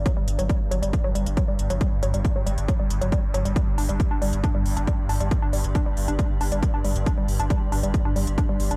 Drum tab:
HH |x-xxx-xxx-xxx-xx|x-xxx-xxx-xxx-xx|x-oxx-oxx-oxx-ox|x-oxx-oxx-oxx-ox|
BD |o---o---o---o---|o---o---o---o---|o---o---o---o---|o---o---o---o---|

HH |x-oxx-oxx-oxx-ox|
BD |o---o---o---o---|